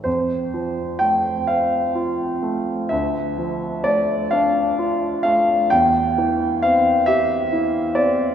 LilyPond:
<<
  \new Staff \with { instrumentName = "Grand piano" } { \time 6/8 \key f \major \tempo 4. = 43 c''4 g''8 f''4. | e''4 d''8 f''4 f''8 | g''4 f''8 e''4 d''8 | }
  \new Staff \with { instrumentName = "Grand piano" } { \time 6/8 \key f \major f,8 f8 a8 c'8 f'8 a8 | d,8 f8 a8 d'8 f'8 a8 | e,8 e8 c'8 g'8 e'8 c'8 | }
>>